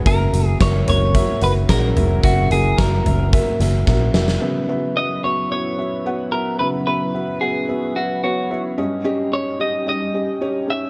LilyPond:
<<
  \new Staff \with { instrumentName = "Clean electric guitar" } { \time 4/4 \key fis \mixolydian \tempo 4 = 110 ais'4 cis''8 cis''4 b'8 ais'4 | fis'8 gis'8 ais'2 r4 | r4 dis''8 cis''8 cis''4. ais'8 | b'8 b'4 gis'4 fis'8 fis'8. r16 |
r4 cis''8 dis''8 dis''4. e''8 | }
  \new Staff \with { instrumentName = "Felt piano" } { \time 4/4 \key fis \mixolydian <ais fis' e''>8 <ais fis' e''>8 <ais fis' e''>8 <ais fis' cis''>8 <ais fis' e''>8 <ais fis' fis''>8 <ais fis' gis'>8 <ais fis' e''>8 | <ais fis' e''>8 <ais fis' fis''>8 <ais fis' e''>8 <ais fis' e''>8 <ais fis' e''>8 <ais fis' e''>8 <ais fis' e''>8 <ais fis' e''>8 | <b fis' e''>8 <b fis' e''>8 <b fis' e''>8 <b fis' e''>8 <b fis' b'>8 <b fis' e''>8 <b fis' fis''>8 <b fis' e''>8 | <b fis' e''>8 <b fis' e''>8 <b fis' e''>8 <b fis' fis''>8 <b fis' e''>8 <b fis' e''>8 <b fis' cis''>8 <b fis' e''>8 |
<cis' g' dis''>8 <cis' g' dis''>8 <cis' g' dis''>8 <cis' g' dis''>8 <cis' g' dis''>8 <cis' g' dis''>8 <cis' g' cis''>8 <cis' g' cis''>8 | }
  \new Staff \with { instrumentName = "Felt piano" } { \clef bass \time 4/4 \key fis \mixolydian cis4. r2 r8 | cis4. r2 r8 | cis4. r2 r8 | cis4. r2 r8 |
<g, g>4. r2 r8 | }
  \new Staff \with { instrumentName = "Analog synth pad" } { \time 4/4 \key fis \mixolydian << { <fis e' ais'>1~ | <fis e' ais'>1 | <fis e' b'>1~ | <fis e' b'>1 |
<g dis' g'>1 | } \\ { cis'1~ | cis'1 | cis'1~ | cis'1~ |
cis'1 | } >> }
  \new Staff \with { instrumentName = "Fingered electric bass" } { \clef bass \time 4/4 \key fis \mixolydian fis,,8 fis,,8 fis,,8 fis,,8. r16 fis,,8 ais,,8 eis,,8 | fis,,8 fis,,8 fis,,8 fis,,8. r16 fis,,8 ais,,8 eis,,8 | r1 | r1 |
r1 | }
  \new DrumStaff \with { instrumentName = "Drums" } \drummode { \time 4/4 <hh bd>8 hh8 <hh bd sn>8 <hh tomfh>8 <hh bd>8 hh8 <hh bd sn>8 <hh tomfh>8 | <hh bd>8 hh8 <hh bd sn>8 <hh tomfh>8 <hh bd>8 <hh sn>8 <bd sn>8 sn16 sn16 | r4 r4 r4 r4 | r4 r4 r4 r4 |
r4 r4 r4 r4 | }
>>